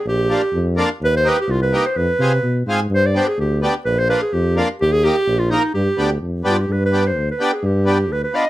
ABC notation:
X:1
M:2/4
L:1/16
Q:1/4=127
K:none
V:1 name="Clarinet"
G6 z2 | B c B G F B2 c | B6 z2 | c d c _A G2 z2 |
B c B _A G2 z2 | G _A G3 F _E2 | G4 z2 F G | B B2 c2 B2 _A |
G4 B B _e2 |]
V:2 name="Accordion"
z2 [_B,DF] z3 [B,DF] z | z2 [_B,_EG] z3 [B,EG] z | z2 [CF_A] z3 [CFA] z | z2 [B,DG] z3 [B,DG] z |
z2 [_B,DF] z3 [B,DF] z | z2 [_B,_EG] z3 [B,E_B] z | z2 [B,DG] z3 [B,DG] z | z2 [B,DG] z3 [B,DG] z |
z2 [B,DG] z3 [B,DF] z |]
V:3 name="Tuba" clef=bass
_B,,,4 F,,4 | _E,,4 C,,4 | F,,2 C,2 B,,2 _A,,2 | G,,4 D,,4 |
_B,,,4 F,,4 | _E,,4 _B,,,4 | G,,2 D,,2 F,,2 G,,2 | G,,4 D,,2 z2 |
G,,4 D,,2 z2 |]